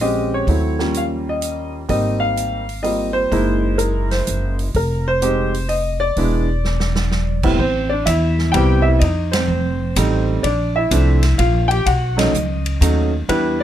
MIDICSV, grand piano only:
0, 0, Header, 1, 2, 480
1, 0, Start_track
1, 0, Tempo, 474684
1, 472, Time_signature, 3, 2, 24, 8
1, 13785, End_track
2, 0, Start_track
2, 0, Title_t, "Grand piano"
2, 0, Program_c, 0, 0
2, 9, Note_on_c, 0, 56, 48
2, 9, Note_on_c, 0, 60, 43
2, 12, Note_on_c, 0, 61, 40
2, 13, Note_on_c, 0, 75, 79
2, 16, Note_on_c, 0, 67, 51
2, 334, Note_off_c, 0, 75, 0
2, 347, Note_on_c, 0, 73, 79
2, 477, Note_off_c, 0, 60, 0
2, 481, Note_off_c, 0, 56, 0
2, 482, Note_off_c, 0, 61, 0
2, 485, Note_off_c, 0, 67, 0
2, 491, Note_on_c, 0, 54, 43
2, 491, Note_on_c, 0, 64, 45
2, 493, Note_on_c, 0, 57, 42
2, 493, Note_on_c, 0, 60, 37
2, 772, Note_off_c, 0, 54, 0
2, 772, Note_off_c, 0, 64, 0
2, 773, Note_off_c, 0, 57, 0
2, 773, Note_off_c, 0, 60, 0
2, 800, Note_on_c, 0, 58, 41
2, 801, Note_on_c, 0, 55, 44
2, 808, Note_on_c, 0, 61, 43
2, 809, Note_on_c, 0, 65, 49
2, 984, Note_on_c, 0, 77, 71
2, 987, Note_off_c, 0, 73, 0
2, 1053, Note_off_c, 0, 77, 0
2, 1307, Note_on_c, 0, 75, 70
2, 1739, Note_off_c, 0, 75, 0
2, 1821, Note_off_c, 0, 58, 0
2, 1822, Note_off_c, 0, 55, 0
2, 1825, Note_off_c, 0, 61, 0
2, 1826, Note_off_c, 0, 65, 0
2, 1907, Note_on_c, 0, 55, 48
2, 1911, Note_on_c, 0, 58, 40
2, 1916, Note_on_c, 0, 60, 45
2, 1919, Note_on_c, 0, 75, 86
2, 1921, Note_on_c, 0, 63, 49
2, 2223, Note_on_c, 0, 77, 94
2, 2249, Note_off_c, 0, 75, 0
2, 2648, Note_off_c, 0, 55, 0
2, 2651, Note_off_c, 0, 58, 0
2, 2653, Note_off_c, 0, 60, 0
2, 2656, Note_off_c, 0, 63, 0
2, 2859, Note_on_c, 0, 75, 78
2, 2868, Note_on_c, 0, 55, 38
2, 2869, Note_on_c, 0, 58, 34
2, 2873, Note_on_c, 0, 60, 34
2, 2881, Note_on_c, 0, 65, 45
2, 2887, Note_off_c, 0, 77, 0
2, 3166, Note_off_c, 0, 75, 0
2, 3167, Note_on_c, 0, 72, 94
2, 3344, Note_off_c, 0, 58, 0
2, 3350, Note_on_c, 0, 56, 58
2, 3352, Note_off_c, 0, 55, 0
2, 3354, Note_off_c, 0, 60, 0
2, 3358, Note_off_c, 0, 65, 0
2, 3359, Note_on_c, 0, 58, 57
2, 3363, Note_on_c, 0, 63, 55
2, 3363, Note_on_c, 0, 64, 69
2, 3822, Note_on_c, 0, 70, 76
2, 3840, Note_off_c, 0, 72, 0
2, 4128, Note_off_c, 0, 70, 0
2, 4158, Note_on_c, 0, 72, 69
2, 4604, Note_off_c, 0, 72, 0
2, 4699, Note_off_c, 0, 56, 0
2, 4703, Note_off_c, 0, 58, 0
2, 4705, Note_off_c, 0, 63, 0
2, 4705, Note_off_c, 0, 64, 0
2, 4815, Note_on_c, 0, 70, 73
2, 5134, Note_on_c, 0, 72, 96
2, 5137, Note_off_c, 0, 70, 0
2, 5278, Note_on_c, 0, 60, 51
2, 5280, Note_on_c, 0, 56, 52
2, 5280, Note_on_c, 0, 67, 62
2, 5285, Note_on_c, 0, 63, 43
2, 5568, Note_off_c, 0, 56, 0
2, 5568, Note_off_c, 0, 60, 0
2, 5568, Note_off_c, 0, 67, 0
2, 5571, Note_off_c, 0, 63, 0
2, 5751, Note_on_c, 0, 75, 82
2, 5783, Note_off_c, 0, 72, 0
2, 6067, Note_on_c, 0, 74, 96
2, 6087, Note_off_c, 0, 75, 0
2, 6245, Note_on_c, 0, 59, 49
2, 6247, Note_on_c, 0, 56, 53
2, 6249, Note_on_c, 0, 62, 48
2, 6250, Note_on_c, 0, 64, 55
2, 6531, Note_off_c, 0, 59, 0
2, 6532, Note_off_c, 0, 56, 0
2, 6533, Note_off_c, 0, 62, 0
2, 6534, Note_off_c, 0, 64, 0
2, 7474, Note_off_c, 0, 74, 0
2, 7521, Note_on_c, 0, 55, 57
2, 7523, Note_on_c, 0, 45, 61
2, 7523, Note_on_c, 0, 60, 52
2, 7525, Note_on_c, 0, 59, 53
2, 7531, Note_on_c, 0, 64, 69
2, 7663, Note_off_c, 0, 55, 0
2, 7664, Note_off_c, 0, 45, 0
2, 7664, Note_off_c, 0, 59, 0
2, 7664, Note_off_c, 0, 60, 0
2, 7667, Note_off_c, 0, 64, 0
2, 7678, Note_on_c, 0, 72, 75
2, 7700, Note_on_c, 0, 60, 56
2, 7983, Note_on_c, 0, 74, 80
2, 7990, Note_off_c, 0, 60, 0
2, 8010, Note_off_c, 0, 72, 0
2, 8010, Note_on_c, 0, 62, 60
2, 8138, Note_off_c, 0, 74, 0
2, 8147, Note_on_c, 0, 76, 81
2, 8152, Note_off_c, 0, 62, 0
2, 8184, Note_on_c, 0, 64, 70
2, 8613, Note_on_c, 0, 79, 88
2, 8619, Note_off_c, 0, 64, 0
2, 8632, Note_on_c, 0, 55, 71
2, 8636, Note_on_c, 0, 60, 63
2, 8638, Note_on_c, 0, 59, 64
2, 8644, Note_on_c, 0, 64, 66
2, 8647, Note_off_c, 0, 76, 0
2, 8660, Note_on_c, 0, 67, 68
2, 8921, Note_on_c, 0, 76, 89
2, 8925, Note_off_c, 0, 79, 0
2, 8950, Note_off_c, 0, 67, 0
2, 8963, Note_off_c, 0, 64, 0
2, 8979, Note_on_c, 0, 64, 62
2, 9086, Note_off_c, 0, 76, 0
2, 9094, Note_on_c, 0, 75, 82
2, 9115, Note_off_c, 0, 55, 0
2, 9117, Note_off_c, 0, 60, 0
2, 9117, Note_off_c, 0, 64, 0
2, 9118, Note_off_c, 0, 59, 0
2, 9141, Note_on_c, 0, 63, 67
2, 9421, Note_on_c, 0, 72, 79
2, 9430, Note_off_c, 0, 63, 0
2, 9438, Note_off_c, 0, 75, 0
2, 9473, Note_on_c, 0, 60, 60
2, 10068, Note_off_c, 0, 60, 0
2, 10079, Note_on_c, 0, 55, 64
2, 10082, Note_on_c, 0, 57, 57
2, 10083, Note_on_c, 0, 60, 58
2, 10086, Note_on_c, 0, 63, 70
2, 10350, Note_off_c, 0, 72, 0
2, 10548, Note_on_c, 0, 74, 81
2, 10558, Note_off_c, 0, 55, 0
2, 10560, Note_off_c, 0, 57, 0
2, 10561, Note_off_c, 0, 60, 0
2, 10562, Note_off_c, 0, 63, 0
2, 10574, Note_on_c, 0, 62, 56
2, 10867, Note_off_c, 0, 62, 0
2, 10877, Note_on_c, 0, 76, 86
2, 10885, Note_off_c, 0, 74, 0
2, 10901, Note_on_c, 0, 64, 67
2, 11036, Note_on_c, 0, 53, 56
2, 11039, Note_on_c, 0, 62, 71
2, 11040, Note_on_c, 0, 57, 60
2, 11041, Note_on_c, 0, 60, 53
2, 11327, Note_off_c, 0, 53, 0
2, 11329, Note_off_c, 0, 57, 0
2, 11329, Note_off_c, 0, 62, 0
2, 11330, Note_off_c, 0, 60, 0
2, 11476, Note_off_c, 0, 76, 0
2, 11488, Note_off_c, 0, 64, 0
2, 11509, Note_on_c, 0, 77, 79
2, 11525, Note_on_c, 0, 65, 67
2, 11811, Note_on_c, 0, 79, 97
2, 11822, Note_off_c, 0, 65, 0
2, 11838, Note_on_c, 0, 67, 77
2, 11846, Note_off_c, 0, 77, 0
2, 11985, Note_off_c, 0, 67, 0
2, 11988, Note_off_c, 0, 79, 0
2, 11994, Note_on_c, 0, 78, 87
2, 12008, Note_on_c, 0, 66, 72
2, 12296, Note_off_c, 0, 78, 0
2, 12303, Note_off_c, 0, 66, 0
2, 12303, Note_on_c, 0, 54, 60
2, 12310, Note_on_c, 0, 57, 64
2, 12315, Note_on_c, 0, 61, 64
2, 12315, Note_on_c, 0, 63, 73
2, 12317, Note_on_c, 0, 75, 84
2, 12453, Note_off_c, 0, 54, 0
2, 12457, Note_off_c, 0, 57, 0
2, 12459, Note_off_c, 0, 61, 0
2, 12459, Note_off_c, 0, 63, 0
2, 12954, Note_on_c, 0, 54, 57
2, 12960, Note_on_c, 0, 61, 57
2, 12961, Note_on_c, 0, 57, 58
2, 12967, Note_on_c, 0, 63, 70
2, 13238, Note_off_c, 0, 75, 0
2, 13246, Note_off_c, 0, 54, 0
2, 13249, Note_off_c, 0, 57, 0
2, 13249, Note_off_c, 0, 61, 0
2, 13252, Note_off_c, 0, 63, 0
2, 13436, Note_on_c, 0, 59, 55
2, 13438, Note_on_c, 0, 55, 63
2, 13439, Note_on_c, 0, 62, 59
2, 13439, Note_on_c, 0, 71, 86
2, 13440, Note_on_c, 0, 64, 75
2, 13738, Note_off_c, 0, 71, 0
2, 13754, Note_off_c, 0, 62, 0
2, 13785, Note_off_c, 0, 55, 0
2, 13785, Note_off_c, 0, 59, 0
2, 13785, Note_off_c, 0, 64, 0
2, 13785, End_track
0, 0, End_of_file